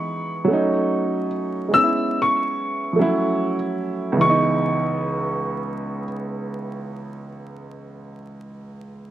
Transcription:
Already playing: grand piano E3 G#3 B3 D#4, upright piano C#6
0.45 grand piano F#3 A3
0.50 grand piano C#4 D#4
1.69 grand piano G#3 B3
1.74 grand piano C#4 D#4, upright piano E6
1.84 grand piano E4
2.22 upright piano C#6
2.93 grand piano F3 A3
2.99 grand piano F#3 C#4 E4
4.12 grand piano C#2
4.17 grand piano E3
4.21 grand piano G#3, upright piano C#6
4.25 grand piano B3
4.30 grand piano D#4

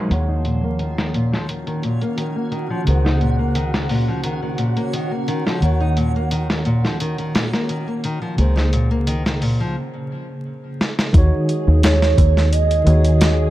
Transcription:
Already playing: synth texture F3 F5, tine electric piano F#3 G#3 D#4 A#4 C5
0.08 fingered electric bass D#2, tine electric piano D#3 A#3 F#5, nylon-string guitar D#3, synth texture C#4, string machine F#5, closed hi-hat
0.13 tine electric piano C#5
0.28 nylon-string guitar D#4
0.45 nylon-string guitar A#2, closed hi-hat
0.64 nylon-string guitar A#3
0.79 nylon-string guitar D#3, closed hi-hat
0.98 nylon-string guitar D#3, snare
1.14 nylon-string guitar A#2, closed hi-hat
1.32 nylon-string guitar F3, snare
1.49 nylon-string guitar D#3, closed hi-hat
1.67 nylon-string guitar D#3, closed hi-hat
1.83 nylon-string guitar A#2, closed hi-hat
2.01 nylon-string guitar A#3, closed hi-hat
2.17 nylon-string guitar D#3, closed hi-hat
2.36 nylon-string guitar A#3
2.51 nylon-string guitar D#3, closed hi-hat
2.70 nylon-string guitar F3
2.85 fingered electric bass C#2, tine electric piano C#3 A#3 G#4, nylon-string guitar D#3, closed hi-hat
2.90 tine electric piano C5
3.04 nylon-string guitar D#4, snare
3.21 nylon-string guitar A#2, closed hi-hat
3.39 nylon-string guitar A#3
3.55 nylon-string guitar D#3, closed hi-hat
3.74 nylon-string guitar D#3, snare
3.89 nylon-string guitar A#2, open hi-hat
4.08 nylon-string guitar F3
4.23 nylon-string guitar D#3, closed hi-hat
4.42 nylon-string guitar D#3
4.58 nylon-string guitar A#2, closed hi-hat
4.77 nylon-string guitar A#3, closed hi-hat
4.93 nylon-string guitar D#3, closed hi-hat
5.11 nylon-string guitar A#3
5.28 nylon-string guitar D#3, closed hi-hat
5.47 nylon-string guitar F3, snare
5.60 fingered electric bass D#2, tine electric piano D#3 A#3 F#5, nylon-string guitar D#3, closed hi-hat
5.65 tine electric piano C#5
5.80 nylon-string guitar D#4
5.97 nylon-string guitar A#2, closed hi-hat
6.16 nylon-string guitar A#3
6.31 nylon-string guitar D#3, closed hi-hat
6.50 nylon-string guitar D#3, snare
6.65 nylon-string guitar A#2, closed hi-hat
6.85 nylon-string guitar F3, snare
7.00 nylon-string guitar D#3, closed hi-hat
7.18 nylon-string guitar D#3, closed hi-hat
7.35 nylon-string guitar A#2, snare, closed hi-hat
7.53 nylon-string guitar A#3, snare
7.69 nylon-string guitar D#3, closed hi-hat
7.88 nylon-string guitar A#3
8.04 nylon-string guitar D#3, closed hi-hat
8.22 nylon-string guitar F3
8.36 fingered electric bass C#2, tine electric piano C#3 A#3 G#4, nylon-string guitar D#3, closed hi-hat
8.42 tine electric piano C5
8.56 nylon-string guitar D#4, snare
8.73 nylon-string guitar A#2, closed hi-hat
8.91 nylon-string guitar A#3
9.07 nylon-string guitar D#3, closed hi-hat
9.26 nylon-string guitar D#3, snare
9.42 nylon-string guitar A#2, open hi-hat
9.60 nylon-string guitar F3
10.81 snare
10.99 snare
11.13 fingered electric bass D#2, tine electric piano D#3 D#4 F#4, string machine G#4, kick, closed hi-hat
11.18 tine electric piano C#5
11.49 closed hi-hat
11.68 fingered electric bass D#2
11.83 soft synth lead C#5, snare, closed hi-hat
12.02 snare
12.18 fingered electric bass D#2, kick, closed hi-hat
12.37 snare
12.52 soft synth lead D#5, closed hi-hat
12.71 closed hi-hat
12.85 fingered electric bass D#2, tine electric piano D#3 D#4 F#4, closed hi-hat
12.90 tine electric piano C#5
13.05 closed hi-hat
13.21 snare, closed hi-hat

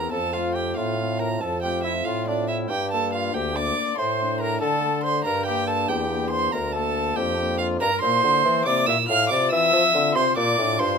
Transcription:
Already playing: bassoon E2, trumpet A#4, violin A#5
0.12 bassoon F2, pipe organ F2, trumpet A4, violin A5
0.33 pipe organ A3 C4 F4, trumpet F4, violin F5
0.55 trumpet G4, violin G5
0.77 bassoon A2, pipe organ A2, trumpet F4, violin F5
0.99 pipe organ A3 C4 F4
1.19 trumpet A#4, violin A#5
1.41 pipe organ F2, bassoon F2, trumpet A4, violin A5
1.62 pipe organ A3 C4 F4, trumpet G4, violin G5
1.83 trumpet E4, violin E5
2.05 pipe organ A2, bassoon A2, trumpet F4, violin F5
2.27 pipe organ A3 C4 F4, trumpet D4, violin D5
2.48 trumpet E4, violin E5
2.69 bassoon G2, pipe organ G2, trumpet G4, violin G5
2.91 pipe organ A#3 D4, trumpet A4, violin A5
3.13 trumpet F4, violin F5
3.34 pipe organ D2, bassoon D2, trumpet G4, violin G5
3.55 pipe organ A#3 D4, trumpet D5, violin D6
3.98 bassoon A2, pipe organ A2, trumpet C5, violin C6
4.20 pipe organ A3 D4
4.41 trumpet A#4, violin A#5
4.61 bassoon D3, pipe organ D3, trumpet A4, violin A5
4.83 pipe organ A3 D4
5.03 trumpet C5, violin C6
5.24 bassoon G2, pipe organ G2, trumpet A#4, violin A#5
5.46 pipe organ A#3 D4, trumpet G4, violin G5
5.67 trumpet A4, violin A5
5.88 pipe organ E2, bassoon E2, trumpet G4, violin G5
6.11 pipe organ A#3 D4
6.31 trumpet C5, violin C6
6.52 pipe organ D2, bassoon D2, trumpet A#4, violin A#5
6.73 pipe organ A#3 D4, trumpet A4, violin A5
7.16 bassoon F2, pipe organ F2, trumpet G4, violin G5
7.39 pipe organ A#3 D4
7.58 trumpet F4, violin F5
7.80 pipe organ G2, bassoon G2, trumpet A#4, violin A#5
8.01 bassoon A#2, pipe organ A#2 A#3 E4, trumpet C5, violin C6
8.23 pipe organ D3, bassoon D3
8.44 pipe organ E3, bassoon E3
8.65 bassoon C3, pipe organ C3 A#3 E4, trumpet D5, violin D6
8.86 bassoon A#2, pipe organ A#2, trumpet E5, violin E6
9.09 bassoon A2, pipe organ A2, trumpet F5, violin F6
9.30 bassoon C3, pipe organ C3 C4 F4, trumpet D5, violin D6
9.51 bassoon E3, pipe organ E3, trumpet E5, violin E6
9.73 pipe organ F3, bassoon F3
9.94 pipe organ D3 C4 F4, bassoon D3
10.15 bassoon C3, pipe organ C3, trumpet C5, violin C6
10.36 pipe organ A#2, bassoon A#2, trumpet D5, violin D6
10.58 bassoon A2, pipe organ A2 D4 F4
10.79 bassoon G2, pipe organ G2, trumpet C5, violin C6

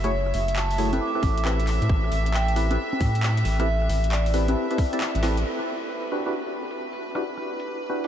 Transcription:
Already playing: analog synth bass F#1, violin section E5
0.04 synth stab A3 E4 F#4 G#4 C#5, vibraphone C#5, cross-stick, closed hi-hat
0.12 vibraphone C#5
0.26 cross-stick
0.34 analog synth bass F#1, vibraphone E5, open hi-hat
0.48 closed hi-hat
0.56 vibraphone A5, clap
0.71 vibraphone A5, open hi-hat
0.78 synth stab A3 E4 F#4 G#4 C#5, open hi-hat
0.93 synth stab C4 E4 G4 A4 B4, closed hi-hat, high conga
1.01 vibraphone D6
1.15 synth stab C4 E4 G4 A4 B4
1.23 analog synth bass A1, kick, cross-stick, open hi-hat, high conga
1.37 cross-stick, closed hi-hat
1.45 synth stab C4 E4 G4 A4 B4, clap
1.60 closed hi-hat
1.67 clap, open hi-hat
1.82 analog synth bass A2, closed hi-hat
1.89 analog synth bass A1, kick
2.04 cross-stick
2.12 analog synth bass A1, open hi-hat
2.26 closed hi-hat
2.34 vibraphone G5, clap
2.48 closed hi-hat
2.56 synth stab C4 E4 G4 A4 B4, open hi-hat
2.71 synth stab C4 E4 G4 A4 B4, closed hi-hat, high conga
2.93 high conga
3.01 analog synth bass A2, kick, open hi-hat, high conga
3.15 closed hi-hat
3.23 clap
3.37 closed hi-hat
3.45 analog synth bass A1, open hi-hat
3.60 synth stab C4 E4 G4 A4 B4, vibraphone E5, cross-stick, closed hi-hat
3.67 vibraphone E5
3.82 cross-stick
3.89 analog synth bass A1, open hi-hat
4.04 closed hi-hat
4.12 vibraphone D5, clap
4.26 vibraphone D5, open hi-hat
4.34 synth stab C4 E4 G4 A4 B4, open hi-hat
4.48 synth stab C4 E4 G4 A4 B4, closed hi-hat, high conga
4.71 synth stab C4 E4 G4 A4 B4, closed hi-hat
4.78 kick, cross-stick, open hi-hat, high conga
4.93 synth stab C4 E4 G4 A4 D5, cross-stick, closed hi-hat
5.00 clap
5.15 analog synth bass A1, closed hi-hat
5.23 synth stab C4 E4 G4 A4 B4, snare, open hi-hat
5.37 closed hi-hat
5.45 violin section B4
5.59 cross-stick
5.82 closed hi-hat
6.12 synth stab D4 E4 F#4 G4 B4
6.26 synth stab D4 E4 F#4 G4 B4, closed hi-hat
6.71 closed hi-hat
6.93 closed hi-hat
7.15 synth stab D4 E4 F#4 G4 B4, cross-stick, closed hi-hat
7.37 cross-stick
7.60 closed hi-hat
7.90 synth stab D4 E4 F#4 G4 B4
8.04 synth stab D4 E4 F#4 G4 B4, closed hi-hat

